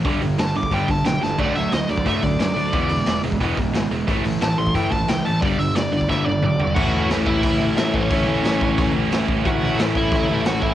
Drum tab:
CC |----------------|x---------------|----------------|----------------|
HH |o-o-o-o-o-o-o---|--o-o-o-o-o-o-o-|o-o-o-o-o-o-o-o-|o-o-o-o-o-o-o-o-|
SD |----o-------o-o-|----o-------o---|----o-------o---|----o-------o---|
T1 |----------------|----------------|----------------|----------------|
T2 |----------------|----------------|----------------|----------------|
FT |----------------|----------------|----------------|----------------|
BD |o------oo-o-----|o------oo-o-----|o------oo-o-----|o------oo-o-----|

CC |----------------|x---------------|----------------|----------------|
HH |o-o-o-o---------|----o---o---o---|o---o---o---o---|o---o---o---o---|
SD |----o---o-------|----o-------o---|----o-------o---|----o-------o---|
T1 |----------o-----|----------------|----------------|----------------|
T2 |------------o---|----------------|----------------|----------------|
FT |--------------o-|----------------|----------------|----------------|
BD |o------oo-------|o-----o-o-----o-|o-----o-o-----o-|o-----o-o-----o-|